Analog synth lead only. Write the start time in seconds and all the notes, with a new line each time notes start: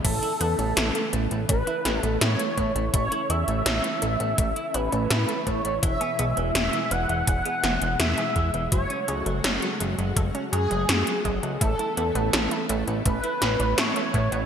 0.04 A4
1.49 B4
2.00 A4
2.21 C#5
2.93 C#5
3.29 E5
4.74 B4
5.46 C#5
5.82 E5
6.55 E5
6.91 F#5
7.99 E5
8.72 C#5
10.52 G#4
11.61 A4
13.06 B4
13.78 C#5